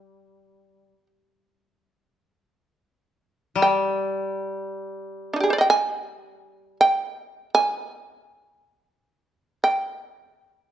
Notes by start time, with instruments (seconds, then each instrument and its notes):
Already playing: koto G3, shamisen G4
3.55 koto G3
3.62 shamisen G5
5.33 shamisen D4 D#4
5.40 shamisen G4 G#4
5.50 shamisen C5 D5
5.58 shamisen D#5 G5
5.70 shamisen G#5
6.81 shamisen G5
7.55 shamisen G#5
8.28 shamisen A5
8.48 shamisen G#5
8.70 shamisen A5
8.89 shamisen G#5
9.64 shamisen G5